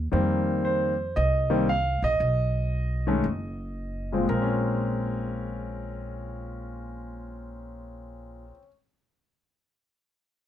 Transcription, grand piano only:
0.12 0.92 D#3 medium
0.12 0.92 G3 medium
0.12 0.92 A#3 medium
0.12 0.92 C4 medium
0.65 1.19 C5 medium
1.16 1.65 D#5 medium
1.50 1.67 D#3 medium
1.50 1.66 G3 medium
1.50 1.67 A#3 medium
1.50 1.67 C4 medium
1.69 2.01 F5 medium
2.04 4.08 D#5 loud
3.07 3.23 D#3 medium
3.07 3.23 G#3 medium
3.07 3.24 A3 medium
3.07 3.24 C#4 medium
4.12 4.28 C#3 soft
4.12 4.28 F3 soft
4.12 4.24 G#3 medium
4.12 4.29 C4 medium
4.17 8.42 A#2 medium
4.25 8.50 G#3 medium
4.29 8.50 A#4 medium
4.34 8.59 C4 medium
4.42 8.67 C#4 medium

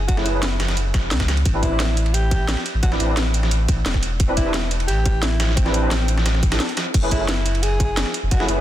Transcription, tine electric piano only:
0.16 0.32 A3 loud
0.16 0.32 C#4 medium
0.16 0.32 E4 medium
0.16 0.32 G#4 medium
0.16 0.33 B4 loud
0.33 0.43 A3 medium
0.33 0.43 C#4 medium
0.33 0.44 E4 medium
0.33 0.44 G#4 medium
0.33 0.44 B4 medium
1.54 1.69 C4 loud
1.54 1.69 D4 medium
1.54 1.69 E4 medium
1.54 1.70 G4 medium
1.54 1.70 B4 loud
1.71 1.80 C4 medium
1.71 1.81 D4 medium
1.71 1.81 E4 medium
1.71 1.81 G4 medium
1.71 1.81 B4 medium
2.91 3.06 C4 loud
2.91 3.06 D4 medium
2.91 3.07 E4 medium
2.91 3.07 G4 medium
2.91 3.07 B4 loud
3.08 3.18 C4 medium
3.08 3.18 D4 medium
3.08 3.18 E4 medium
3.08 3.18 G4 medium
3.08 3.18 B4 medium
4.28 4.43 C4 loud
4.28 4.44 D4 medium
4.28 4.44 E4 medium
4.28 4.44 G4 medium
4.28 4.44 B4 loud
4.45 4.55 C4 medium
4.45 4.55 D4 medium
4.45 4.55 E4 medium
4.45 4.55 G4 medium
4.45 4.55 B4 medium
5.65 5.80 C4 loud
5.65 5.81 D4 medium
5.65 5.81 E4 medium
5.65 5.81 G4 medium
5.65 5.81 B4 loud
5.82 5.92 C4 medium
5.82 5.92 D4 medium
5.82 5.92 E4 medium
5.82 5.92 G4 medium
5.82 5.92 B4 medium
6.51 6.66 C4 medium
6.51 6.66 D4 medium
6.51 6.67 E4 medium
6.51 6.67 G4 medium
6.51 6.67 A4 medium
7.02 7.18 A3 loud
7.02 7.18 C#4 medium
7.02 7.18 E4 medium
7.02 7.18 G#4 medium
7.02 7.18 B4 loud
7.19 7.29 A3 medium
7.19 7.29 C#4 medium
7.19 7.29 E4 medium
7.19 7.30 G#4 medium
7.19 7.30 B4 medium
8.39 8.55 A3 loud
8.39 8.55 C#4 medium
8.39 8.55 E4 medium
8.39 8.55 G#4 medium
8.39 8.56 B4 loud
8.56 8.61 A3 medium
8.56 8.61 C#4 medium
8.56 8.61 E4 medium
8.56 8.61 G#4 medium

